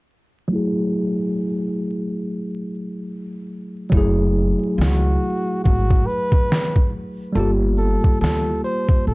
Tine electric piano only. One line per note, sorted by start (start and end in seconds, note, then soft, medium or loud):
0.48 3.87 F#3 medium
0.48 3.89 A3 medium
0.53 3.90 E4 medium
0.53 3.91 G#4 medium
3.90 7.30 F#3 medium
3.90 7.31 A3 medium
3.94 7.32 E4 medium
3.94 7.33 G#4 medium
7.33 9.14 G3 medium
7.33 9.14 A#3 medium
7.37 9.14 F4 medium
7.37 9.14 G4 medium